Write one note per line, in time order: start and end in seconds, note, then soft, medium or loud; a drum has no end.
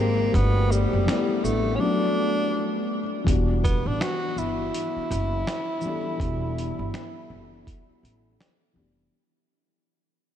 0.00 0.26 G#1 loud
0.00 0.22 G#3 medium
0.00 0.22 A#3 medium
0.00 0.36 A#3 loud
0.00 0.23 C4 medium
0.00 0.24 D#4 medium
0.00 0.25 G4 medium
0.32 0.86 G1 loud
0.32 0.81 G3 medium
0.32 0.81 A3 medium
0.32 0.73 B3 loud
0.32 0.82 B3 medium
0.32 kick loud
0.32 closed hi-hat medium
0.37 0.83 D4 medium
0.37 0.84 F#4 medium
0.71 1.46 G3 medium
0.71 shaker medium
0.93 1.06 F#1 medium
1.04 1.79 G3 medium
1.04 1.78 A3 medium
1.04 1.80 B3 medium
1.04 snare medium
1.09 1.81 D4 medium
1.09 1.83 E4 medium
1.09 finger snap medium
1.09 closed hi-hat medium
1.44 1.76 A1 medium
1.44 1.77 A3 medium
1.44 shaker medium
1.76 2.98 F#3 medium
1.76 2.99 A3 medium
1.76 1.82 C#4 medium
1.80 3.00 B3 medium
1.80 2.90 D4 medium
1.80 3.01 D4 medium
1.85 3.01 F#4 medium
3.24 3.79 E1 medium
3.24 4.21 E3 medium
3.24 4.22 G3 medium
3.24 4.23 B3 medium
3.24 kick loud
3.24 closed hi-hat medium
3.30 4.24 D4 medium
3.30 4.25 F#4 medium
3.64 3.89 B3 medium
3.64 kick medium
3.64 closed hi-hat medium
3.64 shaker soft
3.86 3.98 A1 medium
3.86 4.03 D4 medium
4.01 4.40 F#4 loud
4.01 finger snap medium
4.01 snare medium
4.01 closed hi-hat medium
4.37 4.69 G1 medium
4.37 8.40 E4 loud
4.37 shaker medium
4.74 closed hi-hat medium
4.97 muted upright bass stroke soft
5.11 5.43 F#1 loud
5.11 closed hi-hat soft
5.11 shaker soft
5.47 finger snap medium
5.47 snare loud
5.47 closed hi-hat medium
5.81 6.08 E3 medium
5.81 6.09 G3 medium
5.81 6.10 B3 medium
5.81 shaker soft
5.86 6.11 D4 medium
5.86 6.12 A4 medium
6.17 6.72 E1 loud
6.17 7.14 E3 medium
6.17 7.15 G3 medium
6.17 7.16 B3 medium
6.17 kick loud
6.17 closed hi-hat medium
6.23 7.17 D4 medium
6.23 7.18 F#4 medium
6.58 closed hi-hat medium
6.79 6.91 G1 medium
6.94 finger snap medium
6.94 snare medium
6.94 closed hi-hat soft
7.30 7.62 F#1 medium
7.67 kick medium
7.67 closed hi-hat medium
7.89 muted upright bass stroke soft
8.03 8.35 A1 medium
8.03 closed hi-hat soft
8.41 finger snap medium
8.41 snare loud
8.41 closed hi-hat medium
8.73 9.08 F1 medium
8.73 9.00 E3 medium
8.73 9.01 G3 medium
8.73 9.02 B3 medium
8.78 9.03 D4 medium
8.78 9.04 G4 medium